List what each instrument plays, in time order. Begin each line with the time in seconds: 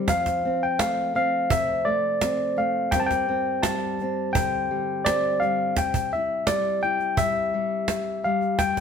Already playing: steel-string acoustic guitar C4
0.07 steel-string acoustic guitar F3, tine electric piano F5, cajon bass, cajon slap
0.26 cajon bass, cajon slap
0.45 steel-string acoustic guitar C4
0.63 tine electric piano G5
0.79 steel-string acoustic guitar A3, tine electric piano F5, cajon slap
1.15 steel-string acoustic guitar C4, tine electric piano F5, cajon slap
1.50 steel-string acoustic guitar C3, tine electric piano E5, cajon bass
1.85 steel-string acoustic guitar A3, tine electric piano D5
2.21 steel-string acoustic guitar C4, cajon slap
2.56 steel-string acoustic guitar A3, tine electric piano F5, cajon slap
2.91 steel-string acoustic guitar G2 G3 C4 A#4, tine electric piano G5, cajon bass, cajon slap
2.96 steel-string acoustic guitar D5, tine electric piano A5
3.06 tine electric piano G5
3.11 cajon bass, cajon slap
3.29 steel-string acoustic guitar C4
3.63 steel-string acoustic guitar G3, tine electric piano A5, cajon slap
3.99 steel-string acoustic guitar C4, cajon slap
4.33 steel-string acoustic guitar D3, tine electric piano G5, cajon bass
4.71 steel-string acoustic guitar G3
5.05 steel-string acoustic guitar C4, tine electric piano D5, cajon slap
5.40 steel-string acoustic guitar G3, tine electric piano F5, cajon slap
5.76 steel-string acoustic guitar C3, tine electric piano G5, cajon bass, cajon slap
5.94 cajon bass
6.12 steel-string acoustic guitar E4, tine electric piano E5, cajon slap
6.47 steel-string acoustic guitar G3, tine electric piano D5, cajon slap
6.82 steel-string acoustic guitar E4, tine electric piano G5, cajon slap
7.00 cajon slap
7.17 steel-string acoustic guitar G3, tine electric piano E5, cajon bass
7.54 steel-string acoustic guitar G3
7.88 cajon slap
8.24 steel-string acoustic guitar G3, tine electric piano F5, cajon slap
8.41 cajon slap
8.59 steel-string acoustic guitar G2, tine electric piano G5, cajon bass, cajon slap
8.77 cajon bass, cajon slap